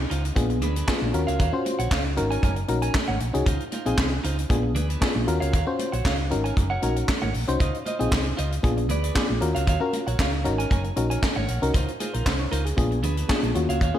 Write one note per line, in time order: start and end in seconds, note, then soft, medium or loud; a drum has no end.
0.10 0.30 C#2 medium
0.10 0.27 D#4 medium
0.10 0.24 F4 medium
0.10 0.23 C5 medium
0.10 closed hi-hat medium
0.24 muted clean electric guitar stroke soft
0.24 closed hi-hat medium
0.36 0.63 A#1 loud
0.36 0.58 B3 medium
0.36 0.58 D4 medium
0.36 0.58 F4 medium
0.36 0.58 G#4 medium
0.36 muted clean electric guitar stroke soft
0.36 kick loud
0.36 closed hi-hat medium
0.36 muted conga medium
0.50 muted clean electric guitar stroke soft
0.50 closed hi-hat soft
0.62 0.81 D2 medium
0.62 0.76 D4 medium
0.62 0.75 G#4 medium
0.62 0.74 B4 medium
0.62 closed hi-hat medium
0.62 muted conga medium
0.62 low conga medium
0.76 0.86 D4 medium
0.76 0.87 G#4 medium
0.76 0.87 B4 medium
0.76 closed hi-hat medium
0.87 1.13 B3 medium
0.87 1.04 D4 medium
0.87 1.14 D4 medium
0.87 1.12 F4 medium
0.87 1.14 G#4 medium
0.87 1.01 G#4 medium
0.87 1.00 B4 medium
0.87 kick loud
0.87 snare loud
0.87 clap medium
0.87 high conga medium
1.01 1.11 A#1 medium
1.01 muted clean electric guitar stroke medium
1.01 high conga medium
1.13 1.24 D#2 loud
1.13 1.45 C#4 medium
1.13 1.45 F4 medium
1.13 1.45 F#4 medium
1.13 1.45 A#4 medium
1.13 muted clean electric guitar stroke soft
1.13 closed hi-hat medium
1.27 1.37 C#2 medium
1.27 1.38 F#4 soft
1.27 1.39 C#5 medium
1.27 1.39 F5 medium
1.27 closed hi-hat medium
1.39 1.50 D#2 loud
1.39 1.56 F#4 medium
1.39 1.53 C#5 medium
1.39 1.52 F5 medium
1.39 kick loud
1.39 closed hi-hat loud
1.53 1.80 C#4 medium
1.53 1.80 F4 medium
1.53 1.81 F#4 medium
1.53 1.81 C5 loud
1.53 muted clean electric guitar stroke soft
1.65 muted clean electric guitar stroke soft
1.65 closed hi-hat medium
1.65 muted conga medium
1.79 1.88 A#1 medium
1.79 1.90 F#4 soft
1.79 1.91 C#5 medium
1.79 1.91 F#5 medium
1.79 closed hi-hat medium
1.91 2.19 C#2 medium
1.91 2.08 F#4 medium
1.91 2.05 C#5 medium
1.91 2.03 F5 medium
1.91 kick loud
1.91 snare loud
1.91 clap medium
1.91 high conga medium
2.05 muted clean electric guitar stroke soft
2.17 2.36 G#1 medium
2.17 2.59 C#4 medium
2.17 2.59 D#4 medium
2.17 2.59 F#4 medium
2.17 2.59 A#4 loud
2.17 muted clean electric guitar stroke soft
2.17 closed hi-hat medium
2.31 2.41 A#4 medium
2.31 2.42 C#5 medium
2.31 2.42 G#5 medium
2.31 closed hi-hat soft
2.43 2.62 F#1 loud
2.43 2.59 A#4 medium
2.43 2.56 C#5 medium
2.43 2.56 G#5 medium
2.43 kick loud
2.43 closed hi-hat medium
2.43 muted conga medium
2.56 muted clean electric guitar stroke medium
2.56 closed hi-hat soft
2.68 2.88 A#1 medium
2.68 2.96 C#4 medium
2.68 2.96 D#4 medium
2.68 2.97 F#4 medium
2.68 2.97 A#4 loud
2.68 muted clean electric guitar stroke soft
2.68 closed hi-hat medium
2.68 muted conga medium
2.82 2.93 A#4 soft
2.82 2.94 C#5 medium
2.82 2.94 G#5 medium
2.82 closed hi-hat medium
2.94 muted clean electric guitar stroke soft
2.94 kick loud
2.94 snare loud
2.94 clap medium
2.94 high conga medium
3.08 3.18 G#1 medium
3.08 3.19 A#4 medium
3.08 3.20 C#5 medium
3.08 3.20 F#5 medium
3.08 high conga medium
3.20 3.31 A#1 medium
3.20 muted clean electric guitar stroke soft
3.20 closed hi-hat medium
3.33 3.44 C2 medium
3.33 3.46 C#4 medium
3.33 3.46 D#4 medium
3.33 3.46 F#4 medium
3.33 3.46 G#4 loud
3.33 muted clean electric guitar stroke soft
3.33 closed hi-hat medium
3.46 3.57 C#2 loud
3.46 3.63 D#4 medium
3.46 3.63 F4 medium
3.46 3.64 C5 loud
3.46 kick loud
3.46 closed hi-hat loud
3.46 muted conga soft
3.60 closed hi-hat soft
3.72 3.85 D#4 medium
3.72 3.86 F4 medium
3.72 3.85 C5 medium
3.72 closed hi-hat medium
3.72 muted conga medium
3.86 3.95 A#1 medium
3.86 4.13 C4 medium
3.86 4.13 D#4 medium
3.86 3.99 D#4 soft
3.86 4.13 F4 medium
3.86 3.98 F4 medium
3.86 4.14 G#4 loud
3.86 3.98 C5 medium
3.86 closed hi-hat medium
3.98 4.17 C2 medium
3.98 kick loud
3.98 snare loud
3.98 clap medium
3.98 high conga medium
4.12 muted clean electric guitar stroke soft
4.24 4.43 C#2 medium
4.24 4.40 D#4 medium
4.24 4.38 F4 medium
4.24 4.36 C5 medium
4.24 closed hi-hat medium
4.38 muted clean electric guitar stroke medium
4.38 closed hi-hat medium
4.50 4.76 A#1 loud
4.50 4.72 B3 medium
4.50 4.72 D4 medium
4.50 4.72 F4 medium
4.50 4.72 G#4 loud
4.50 muted clean electric guitar stroke soft
4.50 kick loud
4.50 closed hi-hat medium
4.50 muted conga medium
4.63 muted clean electric guitar stroke soft
4.75 4.95 D2 medium
4.75 4.90 D4 medium
4.75 4.89 G#4 loud
4.75 4.88 B4 medium
4.75 closed hi-hat medium
4.75 muted conga medium
4.75 low conga medium
4.89 5.00 D4 medium
4.89 5.01 G#4 medium
4.89 5.01 B4 medium
4.89 closed hi-hat medium
5.01 5.27 B3 medium
5.01 5.18 D4 medium
5.01 5.27 D4 medium
5.01 5.26 F4 medium
5.01 5.28 G#4 medium
5.01 5.15 G#4 medium
5.01 5.14 B4 medium
5.01 kick loud
5.01 snare loud
5.01 clap medium
5.01 high conga medium
5.15 5.25 A#1 medium
5.15 muted clean electric guitar stroke medium
5.15 high conga medium
5.27 5.38 D#2 loud
5.27 5.59 C#4 medium
5.27 5.59 F4 medium
5.27 5.59 F#4 medium
5.27 5.59 A#4 loud
5.27 muted clean electric guitar stroke soft
5.27 closed hi-hat medium
5.40 5.50 C#2 medium
5.40 5.52 F#4 soft
5.40 5.53 C#5 medium
5.40 5.53 F5 medium
5.40 closed hi-hat medium
5.53 5.64 D#2 loud
5.53 5.70 F#4 medium
5.53 5.67 C#5 medium
5.53 5.66 F5 medium
5.53 kick loud
5.53 closed hi-hat loud
5.67 5.94 C#4 medium
5.67 5.94 F4 medium
5.67 5.95 F#4 medium
5.67 5.95 C5 loud
5.67 muted clean electric guitar stroke soft
5.79 muted clean electric guitar stroke soft
5.79 closed hi-hat medium
5.79 muted conga medium
5.92 6.02 A#1 medium
5.92 6.03 F#4 medium
5.92 6.04 C#5 medium
5.92 6.04 F#5 medium
5.92 closed hi-hat soft
6.04 6.33 C#2 medium
6.04 6.21 F#4 medium
6.04 6.19 C#5 medium
6.04 6.17 F5 loud
6.04 kick loud
6.04 snare loud
6.04 clap medium
6.04 high conga medium
6.18 muted clean electric guitar stroke soft
6.30 6.50 G#1 loud
6.30 6.73 C#4 medium
6.30 6.73 D#4 medium
6.30 6.73 F#4 medium
6.30 6.73 A#4 medium
6.30 muted clean electric guitar stroke soft
6.30 closed hi-hat medium
6.44 6.55 A#4 soft
6.44 6.56 C#5 medium
6.44 6.56 G#5 medium
6.44 closed hi-hat medium
6.56 6.76 F#1 medium
6.56 muted clean electric guitar stroke soft
6.56 kick loud
6.56 closed hi-hat medium
6.56 muted conga medium
6.70 6.81 A#4 medium
6.70 6.82 C#5 medium
6.70 6.83 F#5 medium
6.82 7.02 A#1 medium
6.82 7.10 C#4 medium
6.82 7.10 D#4 medium
6.82 7.10 F#4 medium
6.82 6.96 A#4 medium
6.82 7.10 A#4 medium
6.82 6.96 C#5 medium
6.82 6.95 F#5 medium
6.82 closed hi-hat medium
6.82 muted conga medium
6.96 muted clean electric guitar stroke soft
6.96 closed hi-hat medium
7.08 muted clean electric guitar stroke soft
7.08 kick loud
7.08 snare loud
7.08 clap medium
7.08 high conga medium
7.22 7.32 G#1 medium
7.22 7.33 A#4 medium
7.22 7.33 C#5 medium
7.22 7.34 F#5 medium
7.22 high conga medium
7.34 7.45 A#1 medium
7.34 muted clean electric guitar stroke soft
7.34 open hi-hat medium
7.48 7.57 C2 medium
7.48 7.60 C#4 medium
7.48 7.60 D#4 medium
7.48 7.60 F#4 medium
7.48 7.61 C5 loud
7.48 muted clean electric guitar stroke soft
7.48 closed hi-hat medium
7.60 7.71 C#2 loud
7.60 7.76 F4 medium
7.60 7.77 C5 medium
7.60 7.77 D#5 medium
7.60 kick loud
7.60 closed hi-hat medium
7.60 muted conga soft
7.74 closed hi-hat soft
7.86 7.99 F4 medium
7.86 7.99 C5 medium
7.86 7.98 D#5 medium
7.86 closed hi-hat medium
7.86 muted conga medium
7.99 8.09 A#1 medium
7.99 8.27 C4 medium
7.99 8.27 D#4 medium
7.99 8.27 F4 medium
7.99 8.12 F4 soft
7.99 8.27 G#4 medium
7.99 8.12 C5 medium
7.99 8.11 D#5 medium
7.99 closed hi-hat medium
8.11 8.31 C2 medium
8.11 kick loud
8.11 snare loud
8.11 clap medium
8.11 high conga medium
8.25 muted clean electric guitar stroke soft
8.37 8.57 C#2 medium
8.37 8.54 F4 medium
8.37 8.51 C5 medium
8.37 8.50 D#5 medium
8.37 closed hi-hat medium
8.51 muted clean electric guitar stroke soft
8.51 closed hi-hat medium
8.63 8.90 A#1 loud
8.63 8.86 B3 medium
8.63 8.86 D4 medium
8.63 8.86 F4 medium
8.63 8.86 G#4 loud
8.63 muted clean electric guitar stroke soft
8.63 kick loud
8.63 closed hi-hat medium
8.63 muted conga medium
8.77 muted clean electric guitar stroke soft
8.77 closed hi-hat soft
8.89 9.09 D2 medium
8.89 9.04 G#4 medium
8.89 9.03 B4 medium
8.89 9.02 D5 medium
8.89 closed hi-hat medium
8.89 muted conga medium
8.89 low conga medium
9.03 9.14 G#4 medium
9.03 9.15 B4 medium
9.03 9.15 D5 medium
9.03 closed hi-hat medium
9.15 9.41 B3 medium
9.15 9.41 D4 medium
9.15 9.40 F4 medium
9.15 9.32 G#4 medium
9.15 9.41 G#4 medium
9.15 9.29 B4 medium
9.15 9.28 D5 medium
9.15 kick loud
9.15 snare loud
9.15 clap medium
9.15 high conga medium
9.29 9.39 A#1 medium
9.29 muted clean electric guitar stroke medium
9.29 high conga medium
9.41 9.52 D#2 loud
9.41 9.72 C#4 medium
9.41 9.73 F4 medium
9.41 9.73 F#4 medium
9.41 9.73 A#4 loud
9.41 muted clean electric guitar stroke soft
9.41 closed hi-hat medium
9.55 9.64 C#2 medium
9.55 9.66 F#4 medium
9.55 9.67 C#5 medium
9.55 9.67 F5 medium
9.55 closed hi-hat medium
9.67 9.78 D#2 loud
9.67 9.84 F#4 medium
9.67 9.81 C#5 medium
9.67 9.80 F5 medium
9.67 kick loud
9.67 closed hi-hat loud
9.67 muted conga soft
9.80 10.08 C#4 medium
9.80 10.08 F4 medium
9.80 10.08 F#4 medium
9.80 10.08 A#4 loud
9.80 muted clean electric guitar stroke soft
9.93 muted clean electric guitar stroke soft
9.93 closed hi-hat medium
9.93 muted conga medium
10.07 10.16 A#1 medium
10.07 10.17 F#4 soft
10.07 10.19 C#5 medium
10.07 10.18 F#5 medium
10.07 closed hi-hat soft
10.19 10.47 C#2 medium
10.19 10.35 F#4 medium
10.19 10.33 C#5 medium
10.19 10.31 F5 medium
10.19 kick loud
10.19 snare loud
10.19 clap medium
10.19 high conga medium
10.32 muted clean electric guitar stroke soft
10.44 10.64 G#1 loud
10.44 10.87 C#4 medium
10.44 10.87 D#4 medium
10.44 10.87 F#4 medium
10.44 10.87 A#4 loud
10.44 muted clean electric guitar stroke soft
10.44 closed hi-hat medium
10.58 10.69 A#4 medium
10.58 10.70 C#5 medium
10.58 10.70 G#5 medium
10.58 closed hi-hat medium
10.70 10.90 F#1 medium
10.70 10.87 A#4 medium
10.70 10.84 C#5 medium
10.70 10.84 G#5 medium
10.70 kick loud
10.70 closed hi-hat medium
10.70 muted conga medium
10.84 muted clean electric guitar stroke soft
10.84 closed hi-hat soft
10.96 11.16 A#1 medium
10.96 11.24 C#4 medium
10.96 11.24 D#4 medium
10.96 11.24 F#4 medium
10.96 11.24 A#4 loud
10.96 muted clean electric guitar stroke soft
10.96 closed hi-hat medium
10.96 muted conga soft
11.10 11.21 A#4 soft
11.10 11.22 C#5 medium
11.10 11.22 G#5 medium
11.10 closed hi-hat medium
11.22 muted clean electric guitar stroke soft
11.22 kick loud
11.22 snare loud
11.22 clap medium
11.22 high conga medium
11.36 11.45 G#1 medium
11.36 11.47 A#4 medium
11.36 11.48 C#5 medium
11.36 11.49 F#5 medium
11.36 high conga medium
11.48 11.59 A#1 medium
11.48 11.62 A#4 medium
11.48 11.62 C#5 medium
11.48 11.61 F#5 medium
11.48 closed hi-hat medium
11.62 11.71 C2 medium
11.62 11.74 C#4 medium
11.62 11.74 D#4 medium
11.62 11.74 F#4 medium
11.62 11.75 A#4 loud
11.62 muted clean electric guitar stroke soft
11.62 closed hi-hat medium
11.74 11.84 C#2 loud
11.74 11.90 D#4 medium
11.74 11.91 F4 medium
11.74 11.91 C5 medium
11.74 kick loud
11.74 closed hi-hat medium
11.74 muted conga soft
11.88 closed hi-hat soft
12.00 12.13 D#4 medium
12.00 12.13 F4 medium
12.00 12.13 G#4 medium
12.00 12.12 C5 medium
12.00 closed hi-hat medium
12.00 muted conga medium
12.13 12.23 A#1 medium
12.13 12.26 D#4 medium
12.13 12.26 F4 medium
12.13 12.25 A#4 medium
12.13 12.25 C5 medium
12.13 closed hi-hat soft
12.26 12.39 C5 medium
12.26 kick loud
12.26 snare loud
12.26 clap medium
12.26 high conga medium
12.40 12.51 C#5 medium
12.40 muted clean electric guitar stroke soft
12.51 12.71 C#2 medium
12.51 12.68 D#4 medium
12.51 12.66 F4 medium
12.51 12.65 A#4 medium
12.51 12.64 C5 medium
12.51 closed hi-hat medium
12.65 12.76 G#4 medium
12.65 muted clean electric guitar stroke soft
12.65 closed hi-hat medium
12.77 13.04 A#1 loud
12.77 12.99 B3 medium
12.77 12.99 D4 medium
12.77 13.00 F4 medium
12.77 13.00 G#4 loud
12.77 muted clean electric guitar stroke soft
12.77 kick loud
12.77 closed hi-hat medium
12.77 muted conga medium
12.91 muted clean electric guitar stroke soft
12.91 closed hi-hat soft
13.03 13.22 D2 medium
13.03 13.18 D4 medium
13.03 13.17 G#4 medium
13.03 13.16 B4 medium
13.03 closed hi-hat medium
13.03 muted conga medium
13.03 low conga medium
13.17 13.28 D4 soft
13.17 13.29 G#4 medium
13.17 13.29 B4 medium
13.17 closed hi-hat medium
13.29 13.55 B3 medium
13.29 13.55 D4 medium
13.29 13.46 D4 medium
13.29 13.54 F4 medium
13.29 13.55 G#4 loud
13.29 13.43 G#4 medium
13.29 13.42 B4 medium
13.29 kick loud
13.29 snare loud
13.29 clap medium
13.29 high conga medium
13.43 13.52 A#1 medium
13.43 muted clean electric guitar stroke medium
13.43 closed hi-hat soft
13.43 high conga medium
13.55 13.65 D#2 loud
13.55 13.86 A#3 medium
13.55 13.86 C#4 medium
13.55 13.86 F4 medium
13.55 13.87 F#4 medium
13.55 muted clean electric guitar stroke soft
13.55 closed hi-hat medium
13.69 13.78 C#2 medium
13.69 13.80 F#4 soft
13.69 13.81 C#5 medium
13.69 13.81 F5 medium
13.69 closed hi-hat medium
13.81 13.91 D#2 loud
13.81 13.97 F#4 medium
13.81 13.95 C#5 medium
13.81 13.94 F5 medium
13.81 kick loud
13.81 closed hi-hat medium
13.94 13.99 A#3 loud
13.94 13.99 C#4 medium
13.94 13.99 F4 medium
13.94 13.99 G#4 loud
13.94 muted clean electric guitar stroke soft